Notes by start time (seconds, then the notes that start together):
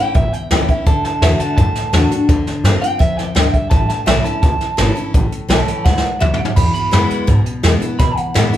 Already playing: A2 E4 G5
0.00 C#4
0.15 A1 E2 E5, kick, closed hi-hat
0.33 G5, closed hi-hat
0.51 C#2 E3 A3 C#4 E4 G5, snare, closed hi-hat
0.68 C#4 E4 E5, muted upright bass stroke, kick, closed hi-hat
0.86 D2 D3 A5, kick, closed hi-hat
1.04 A5, muted upright bass stroke, snare, closed hi-hat
1.21 E2 D3 A3 D4 F#4 E5, snare, closed hi-hat
1.39 A5, muted upright bass stroke, closed hi-hat
1.57 F#2 A2 A5, kick, closed hi-hat
1.75 muted upright bass stroke, snare, closed hi-hat
1.93 E2 D3 A3 D4 F#4, snare, closed hi-hat
2.11 D4 F#4, muted upright bass stroke, closed hi-hat
2.29 D2 D3, kick, snare, closed hi-hat
2.46 muted upright bass stroke, snare, closed hi-hat
2.63 G2 D3 A3 C4 F4, snare, closed hi-hat
2.81 C4 F4 G5, muted upright bass stroke, closed hi-hat
2.99 F2 E5, kick, closed hi-hat
3.17 G5, muted upright bass stroke, snare, closed hi-hat
3.35 D2 G2 G5, snare, closed hi-hat
3.53 E5, kick, closed hi-hat
3.70 A1 A2 A5, kick, snare, closed hi-hat
3.90 A5, muted upright bass stroke, snare, closed hi-hat
4.06 B1 E3 A3 C#4 E4 E5, snare, closed hi-hat
4.24 C#4 E4 A5, muted upright bass stroke, closed hi-hat
4.42 C#2 A5, kick, snare, closed hi-hat
4.60 muted upright bass stroke, snare, closed hi-hat
4.77 G#1 E3 A3 C#4 E4, snare, closed hi-hat
4.96 C#4 E4, muted upright bass stroke, closed hi-hat
5.14 A1 A2, kick, closed hi-hat
5.31 muted upright bass stroke, closed hi-hat
5.49 B1 E3 A3 C#4 E4 A5, snare, closed hi-hat
5.67 muted upright bass stroke, closed hi-hat
5.85 C#2 G#2 F#5, kick, snare
5.97 snare
6.04 muted upright bass stroke
6.20 D2 F#2 E5, mid tom
6.34 mid tom
6.38 F#5, muted upright bass stroke
6.45 floor tom
6.56 E2 B5, kick, closed hi-hat, crash
6.74 B5, muted upright bass stroke, closed hi-hat
6.91 F#2 E3 G#3 B3 E4, snare, closed hi-hat
7.10 muted upright bass stroke, closed hi-hat
7.27 G#2 B2, kick, closed hi-hat
7.46 muted upright bass stroke, closed hi-hat
7.63 E2 E3 G#3 B3 E4, snare, closed hi-hat
7.80 B3 E4, muted upright bass stroke, closed hi-hat
7.99 E2 B2 B5, kick, snare, closed hi-hat
8.17 F#5, muted upright bass stroke, closed hi-hat
8.34 A2 E3 G#3 B3 E4, snare, closed hi-hat
8.53 E4, closed hi-hat